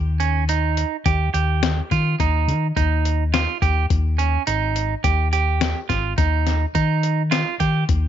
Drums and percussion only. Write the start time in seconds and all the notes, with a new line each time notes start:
0.20 closed hi-hat
0.49 closed hi-hat
0.77 closed hi-hat
1.06 kick, closed hi-hat
1.34 closed hi-hat
1.63 snare, closed hi-hat
1.91 kick, closed hi-hat
2.20 kick, closed hi-hat
2.49 closed hi-hat
2.77 kick, closed hi-hat
3.05 closed hi-hat
3.34 snare, closed hi-hat
3.62 kick, closed hi-hat
3.90 kick, closed hi-hat
4.19 closed hi-hat
4.47 closed hi-hat
4.76 closed hi-hat
5.04 kick, closed hi-hat
5.33 closed hi-hat
5.61 snare, closed hi-hat
5.90 kick, snare, closed hi-hat
6.18 kick, closed hi-hat
6.47 snare, closed hi-hat
6.75 kick, closed hi-hat
7.03 closed hi-hat
7.32 snare, closed hi-hat
7.60 kick, closed hi-hat
7.89 kick, closed hi-hat